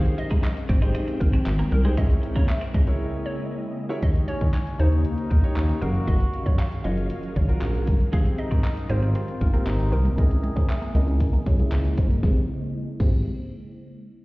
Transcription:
Already playing: G#3 C4 D#4 G4 G#4 C5 F5 G5
0.05 closed hi-hat, shaker
0.18 D#5, muted clean electric guitar stroke, closed hi-hat
0.31 G#2 D#4, kick, closed hi-hat, shaker
0.43 D#5, muted clean electric guitar stroke, clap, closed hi-hat, shaker
0.57 closed hi-hat, shaker
0.69 G#1 C4 C5, kick, closed hi-hat
0.82 D#4 G4 G#4 C5, closed hi-hat, shaker
0.95 D#4, closed hi-hat, shaker
1.08 muted clean electric guitar stroke, closed hi-hat, shaker
1.20 G#1 A#4, kick, closed hi-hat, shaker
1.33 C4, closed hi-hat, shaker
1.46 G#1, clap, closed hi-hat, shaker
1.59 A#3, closed hi-hat, shaker
1.72 C2 A#4, muted clean electric guitar stroke, closed hi-hat
1.84 G#3 D#4 G4 G#4 C5, closed hi-hat, shaker
1.97 C#2 C#3 A#3 C#4 E4 G#4 C#5 D#5, kick, closed hi-hat, shaker
2.10 closed hi-hat, shaker
2.23 muted clean electric guitar stroke, closed hi-hat, shaker
2.36 C#3 A#3 C#5, kick, closed hi-hat, shaker
2.48 E5, muted clean electric guitar stroke, clap, closed hi-hat, shaker
2.61 C4, closed hi-hat, shaker
2.74 C#2 C#4 D#5, kick, closed hi-hat, shaker
2.87 E4 G#4 A#4 C#5, closed hi-hat, shaker
3.26 C#5
3.89 E4 G#4 A#4 C#5
4.02 D#2 D#3 A#3 C#4 D#4 G4 C#5 D#5 F5, kick, closed hi-hat
4.15 closed hi-hat
4.28 C#4 C#5, closed hi-hat
4.41 D#3, kick, closed hi-hat
4.53 C#5, clap, closed hi-hat
4.67 closed hi-hat
4.79 D#2 D#4 G4 C5 C#5, closed hi-hat
4.92 closed hi-hat
5.05 D#4, closed hi-hat
5.18 closed hi-hat
5.30 D#2 A#4, kick, closed hi-hat
5.43 D#4 G4 C#5, closed hi-hat
5.56 D#2, clap, closed hi-hat
5.69 closed hi-hat
5.81 F#1 F#3 C#4 F#4 G#4 A#4 F5, closed hi-hat
5.95 closed hi-hat
6.07 F#1 D#5, kick, closed hi-hat
6.20 closed hi-hat
6.33 closed hi-hat
6.46 F#2 C#5, kick, closed hi-hat
6.59 F5, clap, closed hi-hat
6.72 closed hi-hat
6.84 F#1 F4 F#4 C#5 D#5, closed hi-hat
6.97 closed hi-hat
7.10 closed hi-hat
7.23 closed hi-hat
7.36 G#1 C#5, kick, closed hi-hat
7.48 F4 F#4 A#4, closed hi-hat
7.61 A#1, clap, closed hi-hat
7.74 closed hi-hat
7.87 G1, kick, closed hi-hat
8.00 closed hi-hat
8.12 G#1 G#3 C4 G4 G#4 F5 G5, kick, closed hi-hat, shaker
8.25 closed hi-hat, shaker
8.38 D#4 D#5, muted clean electric guitar stroke, closed hi-hat
8.51 G#2 C4, kick, closed hi-hat, shaker
8.64 D#5, muted clean electric guitar stroke, clap, closed hi-hat, shaker
8.77 closed hi-hat, shaker
8.89 G#1 C4 D#4 F4 G4 A#4 C5, closed hi-hat
9.02 C4, closed hi-hat, shaker
9.15 C4, closed hi-hat, shaker
9.28 muted clean electric guitar stroke, closed hi-hat, shaker
9.41 G#1 A#4, kick, closed hi-hat, shaker
9.53 A#3 C4 G4 A#4, closed hi-hat, shaker
9.66 G#1 D#4, muted clean electric guitar stroke, clap, closed hi-hat, shaker
9.79 closed hi-hat, shaker
9.92 C2 C4 A#4, closed hi-hat, shaker
10.05 A#3, closed hi-hat, shaker
10.17 C#2 C#3 A#3 C#4 E4 G#4 A#4 D#5, kick, closed hi-hat, shaker
10.30 muted clean electric guitar stroke, closed hi-hat, shaker
10.43 G#3, closed hi-hat
10.56 C#3 C4 C#5, kick, closed hi-hat, shaker
10.69 E5, clap, closed hi-hat, shaker
10.82 A#3, closed hi-hat, shaker
10.94 C#2 C#4 E4 A#4 D#5, muted clean electric guitar stroke, closed hi-hat
11.07 C#4, closed hi-hat, shaker
11.20 muted clean electric guitar stroke, kick, closed hi-hat, shaker
11.33 A#3, closed hi-hat, shaker
11.46 C2 G#3 C#5, kick, closed hi-hat, shaker
11.59 C#4 E4 G#4, closed hi-hat, shaker
11.72 C#2, muted clean electric guitar stroke, clap, closed hi-hat, shaker
11.85 closed hi-hat, shaker
11.98 G1 C4, kick, closed hi-hat, shaker
12.10 A#3, closed hi-hat, shaker
12.23 G#1 G#3 C4 G4 G#4 C5, kick, snare, shaker
13.00 G#1 G#3 C4 G4 G#4 C5, kick, crash, shaker

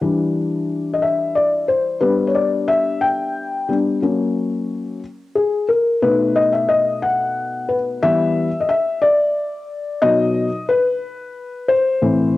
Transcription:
0.01 E3 G3 D4
0.94 D#5
1.02 E5
1.35 D5
1.68 C5
2.01 G3 B3 D4 B4
2.27 C#5
2.35 D5
2.68 E5
3.01 G5
3.68 G3 B3 D4
4.02 F#3 A#3 C#4
5.35 G#4
5.69 A#4
6.02 B2 A3 D#4 B4
6.36 D#5
6.53 E5
6.69 D#5
7.02 F#5
7.69 B4
8.03 E3 G3 B3 E5
8.60 D#5
8.69 E5
9.02 D5
10.02 B2 F#3 D#4 D#5
10.69 B4
11.68 C5
12.02 A2 E3 C4

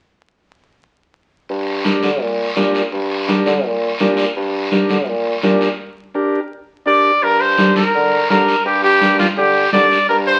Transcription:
1.49 G2, long guiro
1.84 D4 G4 A#4, high conga, short guiro
2.03 D3, high conga, short guiro
2.20 A#2, long guiro
2.56 A#2 D4 G4 A#4, high conga, short guiro
2.74 short guiro
2.92 G2, long guiro
3.28 D4 G4 A#4, high conga, short guiro
3.46 D3, high conga, short guiro
3.64 A#2, long guiro
3.99 A#2 D4 G4 A#4, high conga, short guiro
4.17 short guiro
4.35 G2, long guiro
4.71 D4 G4 A#4, high conga, short guiro
4.89 D3, high conga, short guiro
5.07 A#2, long guiro
5.43 A#2 D4 G4 A#4, high conga, short guiro
5.61 short guiro
6.14 D4 G4 A#4
6.86 D4 G4 A#4 D5
7.22 G2 A#4, long guiro
7.41 C5
7.58 D4 G4 A#4, high conga, short guiro
7.76 A#4, high conga, short guiro
7.94 D3, long guiro
8.30 D3 D4 G4 A#4, high conga, short guiro
8.48 short guiro
8.65 G2 G4, long guiro
8.84 G4
9.01 D4 G4 A#4, high conga, short guiro
9.19 F4, high conga, short guiro
9.37 D3 G4, long guiro
9.73 D3 D4 G4 A#4 D5, high conga, short guiro
9.92 short guiro
10.09 G2 A#4, long guiro
10.27 C5

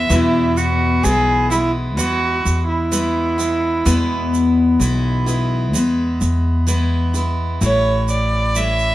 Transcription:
0.09 E2 B2 E3 G#3 B3 E4, shaker
0.57 F#4, shaker
1.03 B1 E3 G#3 B3 E4 G#4, shaker
1.50 E3 G#3 B3 E4, shaker
1.97 E2 E3 G#3 B3 E4 F#4, shaker
2.45 E2, shaker
2.68 E4
2.92 E3 G#3 B3 E4, shaker
3.38 E3 G#3 B3 E4, shaker
3.85 E2 B2 E3 G#3 B3 E4, shaker
4.34 shaker
4.79 B1 E3 G#3 B3 E4, shaker
5.26 E3 G#3 B3 E4, shaker
5.73 E2 E3 G#3 B3 E4, shaker
6.21 E2, shaker
6.67 E3 G#3 B3 E4, shaker
7.14 E3 G#3 B3 E4, shaker
7.61 A1 A2 E3 A3 E4 C#5, shaker
8.08 D5, shaker
8.55 E3 A3 C#4 E4 E5, shaker
8.79 shaker

